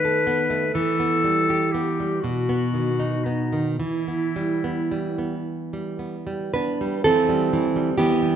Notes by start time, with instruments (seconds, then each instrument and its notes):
Already playing: nylon-string guitar D#3 A3, clarinet B4
0.05 nylon-string guitar A4
0.27 nylon-string guitar B3
0.50 nylon-string guitar A3
0.74 nylon-string guitar E3, clarinet A4
1.00 nylon-string guitar B3
1.24 nylon-string guitar G3
1.50 nylon-string guitar G4
1.72 nylon-string guitar B3, clarinet G4
2.00 nylon-string guitar G3
2.21 nylon-string guitar B2, clarinet F#4
2.49 nylon-string guitar B3
2.74 nylon-string guitar D#3
3.00 nylon-string guitar D#4
3.24 nylon-string guitar B3, clarinet D#4
3.53 nylon-string guitar D#3
3.80 nylon-string guitar E3, clarinet E4
4.08 nylon-string guitar B3
4.36 nylon-string guitar G3
4.64 nylon-string guitar B3
4.91 nylon-string guitar G3
5.18 nylon-string guitar B3
5.73 nylon-string guitar G3
5.99 nylon-string guitar B3
6.27 nylon-string guitar G3
6.54 nylon-string guitar B3 D4 B4
6.81 nylon-string guitar G3
7.04 nylon-string guitar E3 C4 A4
7.29 nylon-string guitar G3
7.53 nylon-string guitar E3
7.76 nylon-string guitar G3
7.98 nylon-string guitar E3 B3 G4
8.22 nylon-string guitar G3